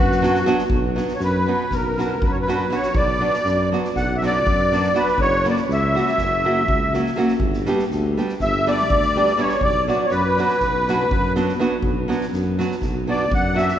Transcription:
Already playing: accordion F#4, clarinet B4
0.00 tuba F#2
0.11 snare
0.22 nylon-string guitar F#3 B3 D4 F#4, snare
0.35 snare
0.46 nylon-string guitar F#3 B3 D4 F#4, snare
0.58 snare
0.70 tuba B1, kick
0.96 nylon-string guitar F#3 B3 D4 F#4, snare
1.08 snare
1.15 accordion C#5
1.20 tuba F#2, accordion B4, snare
1.47 nylon-string guitar F#3 B3 D4 F#4
1.71 tuba B1, accordion A#4, kick, snare
1.98 nylon-string guitar F#3 B3 D4 F#4, snare
2.21 tuba F#2, kick
2.25 accordion B4
2.31 accordion C#5
2.41 accordion B4
2.48 nylon-string guitar F#3 B3 D4 F#4, snare
2.70 nylon-string guitar F#3 B3 D4 F#4, snare
2.75 accordion C#5
2.83 snare
2.93 tuba B1, accordion D5, kick
3.20 nylon-string guitar F#3 B3 D4 F#4
3.34 snare
3.44 tuba F#2, snare
3.72 nylon-string guitar F#3 B3 D4 F#4, snare
3.84 snare
3.96 tuba B1, accordion F#5, kick, snare
4.16 accordion E5
4.22 nylon-string guitar F#3 B3 D4 F#4, accordion D5, snare
4.47 tuba F#2, kick
4.72 nylon-string guitar F#3 B3 D4 F#4, snare
4.83 snare
4.94 nylon-string guitar F#3 B3 D4 F#4, accordion B4, snare
5.07 snare
5.18 tuba F#1, accordion C#5, kick
5.44 nylon-string guitar F#3 A#3 C#4 F#4, snare
5.49 accordion D5
5.56 snare
5.68 tuba C#2, snare
5.73 accordion E5
5.94 nylon-string guitar F#3 A#3 C#4 F#4, snare
6.07 snare
6.18 tuba F#1, kick, snare
6.45 nylon-string guitar F#3 A#3 C#4 F#4
6.68 tuba C#2, kick
6.94 nylon-string guitar F#3 A#3 C#4 F#4, snare
7.06 snare
7.16 nylon-string guitar F#3 A#3 C#4 F#4, snare
7.28 snare
7.40 tuba G1, kick
7.53 snare
7.66 nylon-string guitar G3 B3 D4 G4, snare
7.79 snare
7.90 tuba D2, snare
8.17 nylon-string guitar G3 B3 D4 G4, snare
8.29 snare
8.40 tuba G1, accordion E5, kick, snare
8.67 nylon-string guitar G3 B3 D4 G4, accordion D5, snare
8.79 snare
8.89 tuba D2, kick
9.02 snare
9.16 nylon-string guitar G3 B3 D4 G4, snare
9.26 snare
9.37 nylon-string guitar G3 B3 D4 G4, accordion C#5, snare
9.49 snare
9.61 tuba B1, accordion D5, kick
9.87 nylon-string guitar F#3 B3 D4 F#4, accordion D5, snare
10.05 accordion C#5
10.10 tuba F#2, accordion B4, snare
10.37 nylon-string guitar F#3 B3 D4 F#4, snare
10.48 snare
10.60 tuba B1, kick, snare
10.88 nylon-string guitar F#3 B3 D4 F#4, snare
11.10 tuba F#2, kick
11.36 nylon-string guitar F#3 B3 D4 F#4, snare
11.48 snare
11.59 nylon-string guitar F#3 B3 D4 F#4, snare
11.82 tuba B1, kick
12.08 nylon-string guitar F#3 B3 D4 F#4, snare
12.21 snare
12.32 tuba F#2, snare
12.59 nylon-string guitar F#3 B3 D4 F#4, snare
12.71 snare
12.82 tuba B1, kick, snare
13.07 nylon-string guitar F#3 B3 D4 F#4, accordion D5
13.31 tuba F#2, accordion F#5, kick
13.54 nylon-string guitar F#3 B3 D4 F#4, accordion E5, snare
13.68 snare

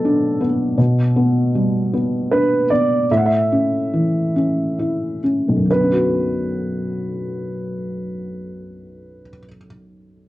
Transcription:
Already playing: felt piano B2 F#3 B3, grand piano A4
0.05 felt piano D4
0.41 felt piano B3
0.78 felt piano B2
1.16 felt piano B3
1.55 felt piano G3
1.93 felt piano B3
2.31 felt piano D4, grand piano B4
2.70 felt piano B3, grand piano D5
3.11 felt piano A2, grand piano E5
3.17 grand piano F#5
3.26 grand piano E5
3.52 felt piano C#4
3.94 felt piano E3
4.36 felt piano C#4
4.79 felt piano E4
5.24 felt piano C#4
5.48 felt piano B1
5.57 felt piano F#2
5.66 felt piano D3
5.71 felt piano B3, grand piano B4
5.83 felt piano C#4
5.92 felt piano F#4

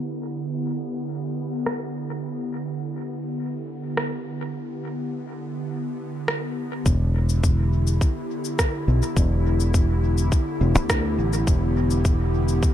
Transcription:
Already playing: analog synth pad D3 B3 E4 G4
1.66 cross-stick
3.97 cross-stick
6.28 cross-stick
6.86 fingered electric bass E1, analog synth pad D3, kick, cabasa
7.06 analog synth pad E4
7.29 cabasa
7.44 analog synth pad G4, kick, cabasa
7.55 analog synth pad B3
7.87 cabasa
8.01 kick, cabasa
8.45 cabasa
8.59 kick, cross-stick, cabasa
8.88 fingered electric bass B1
9.02 cabasa
9.16 fingered electric bass E1, kick, cabasa
9.60 cabasa
9.74 kick, cabasa
10.18 cabasa
10.32 kick, cabasa
10.61 fingered electric bass E1
10.75 fingered electric bass D2, cabasa
10.90 kick, cross-stick, cabasa
11.18 fingered electric bass A1
11.33 cabasa
11.47 fingered electric bass E1, kick, cabasa
11.91 cabasa
12.05 kick, cabasa
12.48 cabasa
12.63 kick, cabasa

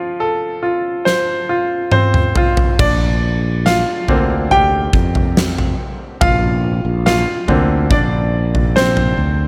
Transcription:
Already playing: grand piano F3 F4
0.20 grand piano A4
0.63 grand piano F4
1.05 grand piano C5, snare
1.49 grand piano F4
1.92 grand piano C4 C5, mid tom
2.14 mid tom
2.35 grand piano F4, floor tom
2.57 floor tom
2.79 fretless electric bass A#1, grand piano D4 D5, kick, floor tom, crash
3.66 grand piano F4 F5, snare
4.08 fretless electric bass D2, grand piano D3 A#3 C4, floor tom
4.51 grand piano G4 G5, floor tom
4.93 fretless electric bass F2, kick
5.15 floor tom
5.37 snare
5.58 floor tom
6.21 fretless electric bass A#1, grand piano F4 F5, kick, floor tom
6.85 fretless electric bass A#1
7.06 grand piano F4 F5, snare
7.48 fretless electric bass D2, grand piano D3 A#3 C4, floor tom
7.91 fretless electric bass A#1, grand piano D4 D5, kick, floor tom
8.55 floor tom
8.76 grand piano C4 C5, snare
8.97 floor tom
9.18 fretless electric bass D2

